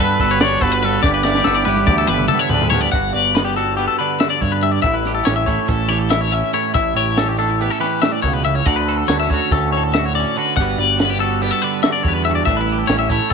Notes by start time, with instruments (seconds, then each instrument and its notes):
Already playing: clean electric guitar G2 G3 B3 F#4
0.00 picked electric bass G2, clean electric guitar A4 B4, trumpet B4
0.19 picked electric bass G1, clean electric guitar D3 F#4 A4, kick, snare, closed hi-hat
0.31 clean electric guitar C#5
0.40 trumpet C#5, clean electric guitar D5, snare, closed hi-hat
0.44 clean electric guitar B3
0.61 picked electric bass G1, clean electric guitar F#4 A4, trumpet B4, kick, closed hi-hat
0.72 clean electric guitar B4
0.82 clean electric guitar G2 B3 B4, trumpet A4, closed hi-hat
1.03 picked electric bass G1, clean electric guitar G2 B3 D5, trumpet G4, kick, snare
1.14 clean electric guitar B4
1.23 clean electric guitar E4 D5, snare
1.35 snare
1.44 picked electric bass G1, clean electric guitar B3 A4, snare
1.55 clean electric guitar D5
1.65 picked electric bass G1, clean electric guitar G3 E4 B4, high tom
1.76 high tom
1.87 picked electric bass D2, clean electric guitar D5, kick, mid tom
1.91 clean electric guitar E4
1.98 clean electric guitar A4
2.07 picked electric bass G1, clean electric guitar B4, mid tom
2.13 clean electric guitar D3 E4
2.19 mid tom
2.28 clean electric guitar A4, mid tom
2.34 clean electric guitar B3
2.39 clean electric guitar C#5
2.49 picked electric bass D2, clean electric guitar B4, floor tom
2.54 clean electric guitar D4
2.62 clean electric guitar E4, floor tom
2.70 clean electric guitar G2 C#5, floor tom
2.74 clean electric guitar B3
2.81 clean electric guitar D5
2.92 picked electric bass G1, clean electric guitar G2 F#4 F#5, kick, closed hi-hat
3.13 picked electric bass G1, clean electric guitar B4 D5, closed hi-hat
3.35 clean electric guitar B3 B4, snare, closed hi-hat
3.45 clean electric guitar G4
3.56 clean electric guitar G3 F#4 A4, closed hi-hat
3.77 clean electric guitar B3 G4, closed hi-hat
3.88 clean electric guitar A4
3.99 clean electric guitar D3 B4 D5, closed hi-hat
4.20 clean electric guitar E5, snare, closed hi-hat
4.30 clean electric guitar D5
4.41 picked electric bass G2, clean electric guitar C#5, kick, closed hi-hat
4.52 clean electric guitar B4
4.62 clean electric guitar G2 E5, closed hi-hat
4.72 clean electric guitar D5
4.82 picked electric bass A1, clean electric guitar A2 E5, kick, closed hi-hat
4.86 clean electric guitar E4
4.94 clean electric guitar B4
5.05 clean electric guitar G4, snare, closed hi-hat
5.15 clean electric guitar A4
5.25 picked electric bass A1, clean electric guitar C#4 C#5, snare, closed hi-hat
5.36 clean electric guitar E5
5.46 picked electric bass A1, clean electric guitar A3 E4 C#5, kick, closed hi-hat
5.67 picked electric bass A1, clean electric guitar C#4 A4, kick, closed hi-hat
5.88 clean electric guitar E3 G4 C#5, snare, closed hi-hat
5.99 clean electric guitar A4
6.10 clean electric guitar E4 E5, snare, closed hi-hat
6.21 clean electric guitar C#5
6.32 clean electric guitar C#4 E5, closed hi-hat
6.54 clean electric guitar A2 E4 C#5, closed hi-hat
6.74 picked electric bass A1, clean electric guitar A2 E4 E5, kick, closed hi-hat
6.95 picked electric bass A1, clean electric guitar G4 C#5, closed hi-hat
7.17 clean electric guitar C#4 A4, snare, closed hi-hat
7.28 clean electric guitar G4
7.38 clean electric guitar A3 D4 A4, closed hi-hat
7.50 clean electric guitar E4
7.60 clean electric guitar B3 G4, closed hi-hat
7.70 clean electric guitar C#4 A4
7.80 clean electric guitar E3 G4 B4, snare, closed hi-hat
8.02 clean electric guitar A2 E5, snare, closed hi-hat
8.12 clean electric guitar D5
8.22 picked electric bass C#2, clean electric guitar B2 C#5, kick, closed hi-hat
8.33 clean electric guitar B4
8.45 clean electric guitar C#3 E5, closed hi-hat
8.55 clean electric guitar C#5
8.66 picked electric bass D2, clean electric guitar D3 F#4 D5, kick, closed hi-hat
8.76 clean electric guitar B4
8.88 clean electric guitar A4, closed hi-hat
8.97 clean electric guitar A4
9.08 picked electric bass D2, clean electric guitar C#5, snare, closed hi-hat
9.12 clean electric guitar B3
9.20 clean electric guitar C#4 E5
9.30 picked electric bass D2, clean electric guitar A3 F#4 C#5, kick, closed hi-hat
9.51 picked electric bass D2, clean electric guitar A4, kick, snare, closed hi-hat
9.56 clean electric guitar C#4
9.72 clean electric guitar A2 C#5, closed hi-hat
9.77 clean electric guitar A4
9.84 clean electric guitar A4
9.94 clean electric guitar E5, snare, closed hi-hat
9.98 clean electric guitar F#4
10.05 clean electric guitar C#5
10.15 clean electric guitar D5, closed hi-hat
10.19 clean electric guitar C#4
10.35 clean electric guitar D3 F#4 B4, closed hi-hat
10.57 picked electric bass G1, clean electric guitar G2 G3 F#5, kick, closed hi-hat
10.61 clean electric guitar B3 F#4 B4
10.78 picked electric bass G1, clean electric guitar B4 D5, closed hi-hat
10.99 clean electric guitar B4, snare, closed hi-hat
11.04 clean electric guitar B3
11.10 clean electric guitar G4
11.20 clean electric guitar G3 F#4 A4, closed hi-hat
11.42 clean electric guitar B3 G4, snare, closed hi-hat
11.51 clean electric guitar A4
11.62 clean electric guitar D3 B4 D5, closed hi-hat
11.83 clean electric guitar F#4 E5, snare, closed hi-hat
11.93 clean electric guitar D5
12.03 picked electric bass E2, clean electric guitar C#5, kick, closed hi-hat
12.08 clean electric guitar B3
12.14 clean electric guitar B4
12.25 clean electric guitar E5, closed hi-hat
12.29 clean electric guitar G2 F#4
12.35 clean electric guitar D5
12.45 picked electric bass A1, clean electric guitar A2 E5, kick, closed hi-hat
12.50 clean electric guitar D4
12.57 clean electric guitar B4
12.61 clean electric guitar E4
12.69 clean electric guitar G4, closed hi-hat
12.79 clean electric guitar A4
12.87 picked electric bass A1, clean electric guitar C#5, snare, closed hi-hat
12.92 clean electric guitar C#4
12.99 clean electric guitar E5
13.09 picked electric bass A1, clean electric guitar A3 E4 C#5, kick, closed hi-hat
13.30 clean electric guitar A4